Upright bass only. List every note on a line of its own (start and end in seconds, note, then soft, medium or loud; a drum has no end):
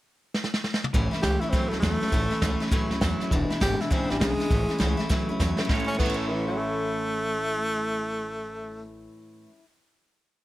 0.94 1.09 A1 medium
1.12 muted upright bass stroke medium
1.23 1.38 C#2 medium
1.43 muted upright bass stroke medium
1.53 1.68 C#2 medium
1.72 1.81 C#2 medium
1.83 1.98 E2 medium
2.02 muted upright bass stroke medium
2.12 2.27 A1 medium
2.32 muted upright bass stroke medium
2.42 2.57 C#2 medium
2.61 muted upright bass stroke medium
2.72 2.87 C#2 medium
2.90 2.99 C#2 medium
3.02 3.16 E2 medium
3.20 muted upright bass stroke medium
3.31 3.46 E1 medium
3.50 muted upright bass stroke medium
3.61 3.76 G#1 medium
3.80 muted upright bass stroke medium
3.91 4.06 G#1 medium
4.11 4.19 G#1 medium
4.21 4.35 B1 medium
4.41 muted upright bass stroke medium
4.51 4.65 A1 medium
4.70 muted upright bass stroke medium
4.80 4.95 C#2 medium
5.00 muted upright bass stroke medium
5.10 5.25 C#2 medium
5.30 5.38 C#2 medium
5.40 5.55 E2 medium
5.60 muted upright bass stroke medium
5.70 5.81 A1 medium
6.00 9.06 A1 medium